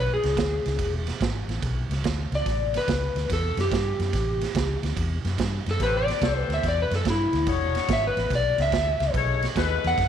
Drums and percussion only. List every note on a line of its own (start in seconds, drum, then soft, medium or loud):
0.23 snare soft
0.23 ride medium
0.37 kick medium
0.37 snare loud
0.37 ride medium
0.66 snare soft
0.66 ride medium
0.79 kick medium
0.79 ride medium
1.07 snare soft
1.07 ride medium
1.21 kick medium
1.21 snare loud
1.21 ride medium
1.49 snare soft
1.49 ride medium
1.62 kick medium
1.62 ride medium
1.91 snare soft
1.91 ride medium
2.04 kick medium
2.04 snare loud
2.04 ride medium
2.32 snare soft
2.32 ride medium
2.46 kick medium
2.46 snare soft
2.46 ride medium
2.74 snare soft
2.74 ride medium
2.88 kick medium
2.88 snare loud
2.88 ride medium
3.16 snare soft
3.16 ride medium
3.30 kick medium
3.30 snare soft
3.30 ride medium
3.57 snare soft
3.57 ride medium
3.72 kick medium
3.72 snare medium
3.72 ride medium
4.00 snare soft
4.00 ride medium
4.13 kick medium
4.13 snare soft
4.13 ride medium
4.41 snare soft
4.41 ride medium
4.55 kick medium
4.55 snare loud
4.55 ride medium
4.83 snare soft
4.83 ride medium
4.97 kick medium
4.97 ride medium
5.25 snare soft
5.25 ride medium
5.38 kick medium
5.38 snare medium
5.38 ride medium
5.66 snare soft
5.66 ride medium
5.80 kick medium
5.80 snare soft
5.80 ride medium
6.08 snare soft
6.08 ride medium
6.22 kick medium
6.22 snare loud
6.22 ride medium
6.50 snare soft
6.50 ride medium
6.63 kick medium
6.63 snare soft
6.63 ride medium
6.91 snare soft
6.91 ride medium
7.05 kick medium
7.05 snare loud
7.05 ride medium
7.33 snare soft
7.33 ride medium
7.46 kick medium
7.46 ride medium
7.75 snare soft
7.75 ride medium
7.89 kick medium
7.89 snare loud
7.89 ride medium
8.17 snare soft
8.17 ride medium
8.30 kick medium
8.30 snare soft
8.30 ride medium
8.58 snare soft
8.58 ride medium
8.72 kick medium
8.72 snare loud
8.72 ride medium
9.00 snare soft
9.00 ride medium
9.14 kick medium
9.14 ride medium
9.42 snare soft
9.42 ride medium
9.56 kick medium
9.56 snare loud
9.56 ride medium
9.84 snare soft
9.84 ride medium
9.98 kick medium
9.98 snare soft
9.98 ride medium